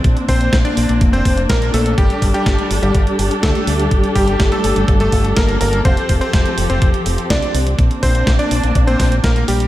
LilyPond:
<<
  \new Staff \with { instrumentName = "Electric grand piano" } { \time 4/4 \key g \minor \tempo 4 = 124 r8 <c' c''>8 r16 <d' d''>8. r16 <c' c''>8 r16 <bes bes'>16 r16 <a a'>16 r16 | <g g'>8 r16 <g g'>8. r16 <g g'>16 r4 <a a'>8 r8 | r8 <g g'>8 r16 <a a'>8. r16 <a a'>8 r16 <bes bes'>16 r16 <bes bes'>16 r16 | <c' c''>8 r16 <c' c''>8. r16 <c' c''>16 r4 <d' d''>8 r8 |
r8 <c' c''>8 r16 <d' d''>8. r16 <c' c''>8 r16 <bes bes'>16 r16 <g g'>16 r16 | }
  \new Staff \with { instrumentName = "String section" } { \time 4/4 \key g \minor <bes c' d'>1 | <g g' a'>1~ | <g g' a'>1 | <f c' g'>1 |
<bes d'>1 | }
  \new Staff \with { instrumentName = "Fingered electric bass" } { \clef bass \time 4/4 \key g \minor bes,,16 r16 bes,,8 bes,,16 r16 bes,,16 bes,,16 f,,8 f,,8 bes,,8 bes,,8 | g,,16 r16 g,,16 r16 g,,16 r16 g,,16 g,,16 g,,16 r16 g,,16 r16 d,16 r16 d,8 | g,,16 r16 g,,8 g,,16 r16 g,,16 g,,16 g,,8 g,,8 g,,8 g,,8 | f,,16 r16 f,,16 r16 f,,16 r16 f,,16 f,,16 f,,16 r16 f,,16 r16 c,16 r16 c,8 |
bes,,16 r16 bes,,8 bes,,16 r16 bes,,16 bes,,16 bes,,8 bes,,8 bes,,8 bes,,8 | }
  \new DrumStaff \with { instrumentName = "Drums" } \drummode { \time 4/4 <hh bd>16 hh16 <hho bd>16 hh16 <hh bd sn>16 hh16 hho16 hh16 <hh bd>16 hh16 <hho bd>16 hh16 <hh bd sn>16 hh16 hho16 hh16 | <hh bd>16 hh16 <hho bd>16 hh16 <hh bd sn>16 hh16 hho16 hh16 <hh bd>16 hh16 hho16 hh16 <hh bd sn>16 hh16 hho16 hh16 | <hh bd>16 hh16 <hho bd>16 hh16 <hh bd sn>16 hh16 hho16 hh16 <hh bd>16 hh16 <hho bd>16 hh16 <hh bd sn>16 hh16 hho16 hh16 | <hh bd>16 hh16 <hho bd>16 hh16 <hh bd sn>16 hh16 hho16 hh16 <hh bd>16 hh16 hho16 hh16 <hh bd sn>16 hh16 hho16 hh16 |
<hh bd>16 hh16 <hho bd>16 hh16 <hh bd sn>16 hh16 hho16 hh16 <hh bd>16 hh16 <hho bd sn>16 hh16 <hh bd sn>16 hh16 hho16 hh16 | }
>>